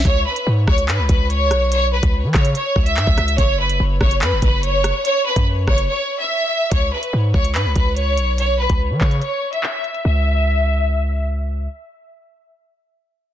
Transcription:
<<
  \new Staff \with { instrumentName = "Violin section" } { \time 4/4 \key cis \minor \tempo 4 = 144 cis''8 b'8 r8 cis''8 b'8 b'8 cis''4 | cis''8 b'8 r8 cis''8 cis''8. e''4~ e''16 | cis''8 b'8 r8 cis''8 b'8 b'8 cis''4 | cis''8 b'8 r8 cis''8 cis''8. e''4~ e''16 |
cis''8 b'8 r8 cis''8 b'8 b'8 cis''4 | cis''8 b'8 r8 cis''8 cis''8. e''4~ e''16 | e''2. r4 | r1 | }
  \new Staff \with { instrumentName = "808-style bass" } { \clef bass \time 4/4 \key cis \minor cis,8 r8 gis,8 cis,8 gis,16 cis,16 cis,4 b,,8~ | b,,8. cis,8 e16 cis8 r8 cis,8 gis,16 cis,16 cis,8 | fis,,4 fis,,8 fis,,8 fis,16 fis,,16 fis,,4~ fis,,16 r16 | r8. fis,8. fis,,8 r2 |
cis,8 r8 gis,8 cis,8 gis,16 cis,16 cis,4 b,,8~ | b,,8. cis,8 e16 cis8 r2 | cis,1 | r1 | }
  \new DrumStaff \with { instrumentName = "Drums" } \drummode { \time 4/4 <hh bd>8. hh16 r8 <bd ss>16 hh16 hc8 <hh bd>8 hh8 <hh ss>8 | hh8. <hh bd>16 r8 <hc bd ss>16 hh16 hh8 bd16 hh16 hc16 bd16 <hh ss>16 hh16 | <hh bd>8. hh16 r8 <bd ss>16 hh16 hc8 <hh bd>8 hh8 <hh ss>8 | hh8. <hh bd>16 r8 <bd ss>16 hh16 r4 r4 |
<hh bd>8. hh16 r8 bd16 hh16 hc8 <hh bd>8 hh8 hh8 | hh8. <hh bd>16 r8 <hc bd>16 hh16 hh8. hh16 hc8 hh16 hh16 | r4 r4 r4 r4 | r4 r4 r4 r4 | }
>>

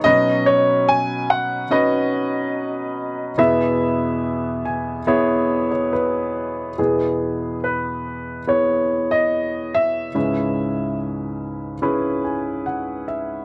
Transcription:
<<
  \new Staff \with { instrumentName = "Grand piano" } { \time 4/4 \key e \major \tempo 4 = 72 dis''8 cis''8 gis''8 fis''8 dis''2 | e''2. r4 | gis'4 b'4 cis''8. dis''8. e''8~ | e''4 r2. | }
  \new Staff \with { instrumentName = "Upright piano" } { \time 4/4 \key e \major << { r1 | r4. gis''8 e''8. cis''16 b'4 | r1 | r2 r8 gis''8 fis''8 e''8 | } \\ { <cis' dis' fis' b'>2 <cis' dis' fis' b'>2 | <b e' gis' b'>2 <b e' gis' cis''>2 | <b e' gis' b'>2 <b e' gis' cis''>2 | <cis' e' gis' b'>2 <cis' e' gis' b'>2 | } >> }
  \new Staff \with { instrumentName = "Upright piano" } { \clef bass \time 4/4 \key e \major <b, fis>1 | <e, b,>1 | <e, b,>1 | <cis, gis,>1 | }
>>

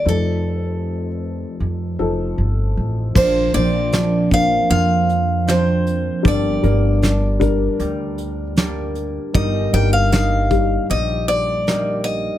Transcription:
<<
  \new Staff \with { instrumentName = "Steel-string acoustic guitar" } { \time 4/4 \key bes \major \tempo 4 = 78 a'2. r4 | c''8 d''4 f''8 f''4 c''4 | d''2. r4 | ees''8 g''16 f''16 f''4 ees''8 d''4 ees''8 | }
  \new Staff \with { instrumentName = "Upright piano" } { \time 4/4 \key bes \major <f ees' a'>4. r4 <f ees' a'>4 r8 | <bes d' c''>8 <bes d' c''>8 r8 <bes d' bes'>4. r4 | <g d' bes'>8 <g d' bes'>8 r8 <g d' bes'>4. r4 | <g ees' bes'>8 <g ees' bes'>8 r8 <g ees' g'>4. r4 | }
  \new Staff \with { instrumentName = "Upright piano" } { \clef bass \time 4/4 \key bes \major <f,, f,>1 | <bes,, bes,>1 | <g,, g,>1 | <g,, g,>1 | }
  \new Staff \with { instrumentName = "Harp" } { \time 4/4 \key bes \major r1 | <f d'>8 c'8 d'4 f4 <f c' d'>4 | <g d'>8 bes8 d'4 g4 <g bes d'>4 | <g ees'>8 bes8 ees'4 g4 <g bes ees'>4 | }
  \new Staff \with { instrumentName = "Upright bass" } { \clef bass \time 4/4 \key bes \major f,2 f,8 f,,8 g,,8 a,,8 | bes,,8 bes,,4. f,2 | g,,8 g,,4. d,2 | g,,8 g,,4. bes,,2 | }
  \new DrumStaff \with { instrumentName = "Drums" } \drummode { \time 4/4 r4 r4 r4 r4 | <cymc bd>8 hh8 <hh sn>8 <hh bd>8 hh8 hh8 <hh sn>8 hh8 | <hh bd>8 hh8 <hh sn>8 <hh bd>8 hh8 hh8 <hh sn>8 hh8 | <hh bd>8 hh8 <hh sn>8 <hh bd>8 hh8 hh8 <hh sn>8 hh8 | }
>>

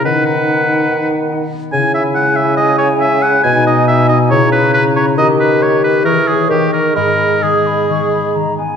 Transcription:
<<
  \new Staff \with { instrumentName = "Flute" } { \time 4/4 \key gis \minor \tempo 4 = 138 fis''2.~ fis''8 r8 | gis''1~ | gis''2 ais''2~ | ais''2 cis'''2 |
b''4 dis'''8 b''8 cis'''8 b''8 ais''8 gis''8 | }
  \new Staff \with { instrumentName = "Oboe" } { \time 4/4 \key gis \minor b'8 b'2 r4. | gis''8 e''8 fis''8 e''8 dis''8 cis''8 e''8 fis''8 | gis''8 dis''8 e''8 dis''8 cis''8 b'8 b'8 cis''8 | dis''8 b'8 cis''8 b'8 ais'8 gis'8 g'8 ais'8 |
ais'4 gis'2 r4 | }
  \new Staff \with { instrumentName = "Clarinet" } { \time 4/4 \key gis \minor dis'2.~ dis'8 r8 | e'1 | dis'2 e'2 | g'2 gis'4 ais'4 |
gis'2.~ gis'8 r8 | }
  \new Staff \with { instrumentName = "Harp" } { \time 4/4 \key gis \minor dis8 dis'8 b8 dis'4 b8 dis'8 b8 | cis8 e'8 gis8 e'8 gis8 e'8 gis8 e'8 | b,8 dis'8 b8 dis'8 cis8 e'8 cis'8 e'8 | dis8 dis'8 ais8 dis'8 e8 <gis' cis''>8 dis8 <ais' dis''>8 |
gis,8 b8 dis8 b8 dis8 b8 dis8 b8 | }
  \new Staff \with { instrumentName = "Bassoon" } { \clef bass \time 4/4 \key gis \minor dis2.~ dis8 r8 | cis1 | b,2 cis2 | dis2 e4 dis4 |
gis2.~ gis8 r8 | }
>>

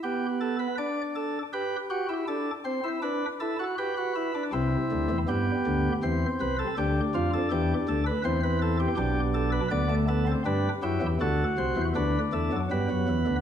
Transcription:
<<
  \new Staff \with { instrumentName = "Pipe organ" } { \time 3/4 \key c \major \tempo 4 = 80 << { g'8 a'16 b'16 d''8 a'8 b'8 g'8 | a'8 c''8 b'8 a'8 b'4 | e'4 g'4 c''8 b'16 a'16 | g'8 f'16 a'16 g'8 a'16 b'16 c''16 b'16 a'16 g'16 |
g'8 a'16 b'16 d''8 a'8 b'8 g'8 | a'8 c''8 b'8 a'8 b'4 | } \\ { b4 d'4 g'8 fis'16 e'16 | d'8 c'16 e'16 d'8 e'16 fis'16 g'16 fis'16 e'16 d'16 | c'4 b4 c'4 | d'2 c'4 |
d'4 b16 a16 b16 c'16 d'8 e'8 | fis'4 d'4 b4 | } >> }
  \new Staff \with { instrumentName = "Pipe organ" } { \clef bass \time 3/4 \key c \major r2. | r2. | <c, c>8 <d, d>16 <e, e>16 <g, g>8 <d, d>8 <e, e>8 <c, c>8 | <d, d>8 <f, f>8 <e, e>8 <d, d>8 <e, e>4 |
<b,, b,>4 <d, d>4 <g, g>8 <fis, fis>16 <e, e>16 | <d, d>8 <c, c>16 <e, e>16 <d, d>8 <e, e>16 <fis, fis>16 <g, g>16 <fis, fis>16 <e, e>16 <d, d>16 | }
>>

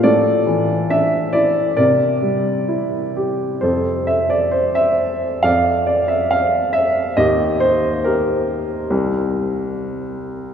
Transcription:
<<
  \new Staff \with { instrumentName = "Upright piano" } { \time 4/4 \key c \mixolydian \tempo 4 = 69 << { d''4 e''8 d''8 d''4. r8 | \key f \major c''8 e''16 d''16 c''16 e''8. f''8 d''16 e''16 f''8 e''8 | ees''8 c''8 bes'2 r4 | } \\ { a'2 bes'2 | a'2 d''2 | g'4 g'2 r4 | } >> }
  \new Staff \with { instrumentName = "Upright piano" } { \clef bass \time 4/4 \key c \mixolydian a,8 e8 d'8 e'8 c8 g8 e'8 g'8 | \key f \major f,2 f,2 | ees,2 c,2 | }
>>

